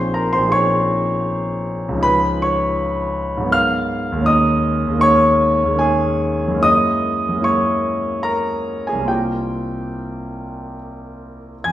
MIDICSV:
0, 0, Header, 1, 2, 480
1, 0, Start_track
1, 0, Tempo, 753769
1, 1290, Time_signature, 3, 2, 24, 8
1, 3691, Tempo, 815217
1, 5131, Tempo, 847458
1, 7102, End_track
2, 0, Start_track
2, 0, Title_t, "Grand piano"
2, 0, Program_c, 0, 0
2, 0, Control_c, 0, 64, 127
2, 0, Note_on_c, 0, 34, 44
2, 0, Note_on_c, 0, 53, 36
2, 0, Note_on_c, 0, 60, 38
2, 0, Note_on_c, 0, 63, 34
2, 0, Note_on_c, 0, 68, 34
2, 0, Note_on_c, 0, 72, 71
2, 0, Note_on_c, 0, 84, 81
2, 69, Note_off_c, 0, 72, 0
2, 86, Note_off_c, 0, 84, 0
2, 90, Note_on_c, 0, 82, 68
2, 97, Note_on_c, 0, 70, 52
2, 207, Note_off_c, 0, 70, 0
2, 208, Note_on_c, 0, 84, 75
2, 212, Note_off_c, 0, 82, 0
2, 219, Note_on_c, 0, 72, 57
2, 229, Note_off_c, 0, 34, 0
2, 238, Note_on_c, 0, 34, 45
2, 246, Note_off_c, 0, 53, 0
2, 255, Note_on_c, 0, 53, 35
2, 267, Note_off_c, 0, 60, 0
2, 277, Note_on_c, 0, 60, 35
2, 284, Note_off_c, 0, 63, 0
2, 293, Note_on_c, 0, 63, 36
2, 303, Note_off_c, 0, 68, 0
2, 312, Note_on_c, 0, 68, 37
2, 328, Note_off_c, 0, 72, 0
2, 330, Note_on_c, 0, 85, 84
2, 331, Note_off_c, 0, 84, 0
2, 335, Note_on_c, 0, 73, 62
2, 785, Note_off_c, 0, 73, 0
2, 808, Note_off_c, 0, 85, 0
2, 1200, Note_on_c, 0, 37, 48
2, 1209, Note_off_c, 0, 53, 0
2, 1217, Note_off_c, 0, 34, 0
2, 1219, Note_on_c, 0, 53, 42
2, 1237, Note_off_c, 0, 60, 0
2, 1237, Note_on_c, 0, 61, 36
2, 1245, Note_off_c, 0, 63, 0
2, 1254, Note_off_c, 0, 68, 0
2, 1258, Note_on_c, 0, 63, 36
2, 1278, Note_on_c, 0, 68, 35
2, 1290, Note_on_c, 0, 83, 98
2, 1298, Note_on_c, 0, 71, 74
2, 1301, Control_c, 0, 64, 0
2, 1411, Control_c, 0, 64, 127
2, 1518, Note_off_c, 0, 71, 0
2, 1531, Note_off_c, 0, 83, 0
2, 1543, Note_on_c, 0, 85, 72
2, 1549, Note_on_c, 0, 73, 54
2, 2148, Note_on_c, 0, 44, 49
2, 2166, Note_on_c, 0, 54, 37
2, 2178, Note_off_c, 0, 37, 0
2, 2188, Note_off_c, 0, 53, 0
2, 2190, Note_on_c, 0, 59, 42
2, 2197, Note_off_c, 0, 61, 0
2, 2201, Note_off_c, 0, 63, 0
2, 2211, Note_on_c, 0, 63, 42
2, 2217, Note_off_c, 0, 68, 0
2, 2229, Note_on_c, 0, 70, 38
2, 2233, Note_off_c, 0, 73, 0
2, 2244, Note_on_c, 0, 89, 98
2, 2250, Note_on_c, 0, 77, 71
2, 2255, Note_off_c, 0, 85, 0
2, 2261, Control_c, 0, 64, 0
2, 2368, Control_c, 0, 64, 127
2, 2624, Note_on_c, 0, 39, 55
2, 2641, Note_on_c, 0, 56, 41
2, 2658, Note_off_c, 0, 44, 0
2, 2660, Note_on_c, 0, 58, 40
2, 2667, Note_off_c, 0, 54, 0
2, 2677, Note_on_c, 0, 61, 45
2, 2680, Note_off_c, 0, 59, 0
2, 2690, Note_off_c, 0, 63, 0
2, 2699, Note_off_c, 0, 77, 0
2, 2700, Note_off_c, 0, 70, 0
2, 2702, Note_on_c, 0, 63, 42
2, 2713, Note_on_c, 0, 87, 83
2, 2722, Note_off_c, 0, 89, 0
2, 2723, Note_on_c, 0, 75, 58
2, 2734, Control_c, 0, 64, 0
2, 2823, Control_c, 0, 64, 127
2, 3089, Note_off_c, 0, 39, 0
2, 3099, Note_on_c, 0, 39, 49
2, 3110, Note_off_c, 0, 56, 0
2, 3120, Note_on_c, 0, 56, 41
2, 3131, Note_off_c, 0, 58, 0
2, 3140, Note_on_c, 0, 58, 39
2, 3147, Note_off_c, 0, 61, 0
2, 3157, Note_on_c, 0, 61, 43
2, 3170, Note_off_c, 0, 63, 0
2, 3176, Note_off_c, 0, 75, 0
2, 3179, Note_on_c, 0, 63, 42
2, 3191, Note_on_c, 0, 85, 101
2, 3196, Note_off_c, 0, 87, 0
2, 3202, Note_on_c, 0, 73, 73
2, 3585, Note_off_c, 0, 39, 0
2, 3595, Note_on_c, 0, 39, 46
2, 3603, Note_off_c, 0, 56, 0
2, 3612, Note_on_c, 0, 56, 43
2, 3625, Note_off_c, 0, 58, 0
2, 3635, Note_on_c, 0, 58, 39
2, 3645, Note_off_c, 0, 61, 0
2, 3655, Note_on_c, 0, 61, 41
2, 3664, Note_off_c, 0, 63, 0
2, 3666, Note_off_c, 0, 73, 0
2, 3673, Note_on_c, 0, 63, 42
2, 3685, Note_on_c, 0, 80, 73
2, 3686, Note_off_c, 0, 85, 0
2, 3698, Note_on_c, 0, 68, 60
2, 4094, Note_on_c, 0, 42, 47
2, 4105, Note_off_c, 0, 56, 0
2, 4114, Note_on_c, 0, 56, 40
2, 4124, Note_off_c, 0, 39, 0
2, 4124, Note_off_c, 0, 58, 0
2, 4133, Note_on_c, 0, 58, 39
2, 4140, Note_off_c, 0, 61, 0
2, 4149, Note_on_c, 0, 61, 38
2, 4161, Note_off_c, 0, 63, 0
2, 4165, Note_off_c, 0, 68, 0
2, 4168, Note_on_c, 0, 64, 39
2, 4180, Note_on_c, 0, 87, 101
2, 4182, Note_off_c, 0, 80, 0
2, 4189, Note_on_c, 0, 75, 74
2, 4195, Control_c, 0, 64, 0
2, 4306, Control_c, 0, 64, 127
2, 4561, Note_off_c, 0, 42, 0
2, 4570, Note_on_c, 0, 42, 41
2, 4583, Note_off_c, 0, 56, 0
2, 4592, Note_on_c, 0, 56, 35
2, 4600, Note_off_c, 0, 58, 0
2, 4609, Note_on_c, 0, 58, 40
2, 4618, Note_off_c, 0, 61, 0
2, 4627, Note_on_c, 0, 61, 39
2, 4632, Note_off_c, 0, 64, 0
2, 4634, Note_off_c, 0, 75, 0
2, 4643, Note_on_c, 0, 64, 39
2, 4653, Note_off_c, 0, 87, 0
2, 4660, Note_on_c, 0, 85, 74
2, 4664, Note_on_c, 0, 73, 56
2, 5112, Note_off_c, 0, 73, 0
2, 5124, Note_on_c, 0, 82, 77
2, 5132, Note_on_c, 0, 70, 57
2, 5133, Note_off_c, 0, 85, 0
2, 5467, Note_off_c, 0, 70, 0
2, 5486, Note_off_c, 0, 82, 0
2, 5487, Note_on_c, 0, 80, 63
2, 5498, Note_on_c, 0, 68, 49
2, 5520, Note_on_c, 0, 36, 41
2, 5538, Note_on_c, 0, 55, 29
2, 5545, Note_off_c, 0, 58, 0
2, 5547, Note_off_c, 0, 42, 0
2, 5554, Note_on_c, 0, 58, 31
2, 5558, Note_off_c, 0, 56, 0
2, 5572, Note_on_c, 0, 60, 28
2, 5574, Note_off_c, 0, 61, 0
2, 5582, Note_off_c, 0, 64, 0
2, 5591, Note_on_c, 0, 65, 33
2, 5605, Note_on_c, 0, 79, 59
2, 5607, Note_off_c, 0, 68, 0
2, 5610, Note_off_c, 0, 80, 0
2, 5610, Note_on_c, 0, 67, 45
2, 5623, Control_c, 0, 64, 0
2, 5721, Control_c, 0, 64, 127
2, 6548, Note_off_c, 0, 67, 0
2, 6568, Note_off_c, 0, 79, 0
2, 6985, Note_off_c, 0, 36, 0
2, 6994, Note_off_c, 0, 55, 0
2, 7002, Note_off_c, 0, 58, 0
2, 7011, Note_off_c, 0, 60, 0
2, 7020, Note_off_c, 0, 65, 0
2, 7057, Note_on_c, 0, 92, 73
2, 7063, Note_on_c, 0, 41, 35
2, 7063, Note_on_c, 0, 80, 58
2, 7065, Control_c, 0, 64, 0
2, 7102, Note_off_c, 0, 41, 0
2, 7102, Note_off_c, 0, 80, 0
2, 7102, Note_off_c, 0, 92, 0
2, 7102, End_track
0, 0, End_of_file